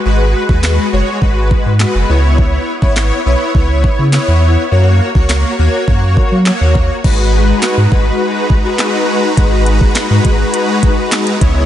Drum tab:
CC |----------------|----------------|----------------|x---------------|
HH |----------------|----------------|----------------|----------------|
CP |----x-------x---|----x-------x---|----x-------x---|----x-------x---|
SD |----o-------o---|----o-------o---|----o-------o---|----o-------o---|
BD |---o----o-o-----|o--o----o-o-----|---o----o-o---o-|o-----o---o-----|

CC |----------------|
HH |x-x-x-x-x-x-xxx-|
CP |----x-------x---|
SD |----o-------o---|
BD |o--o--o---o---o-|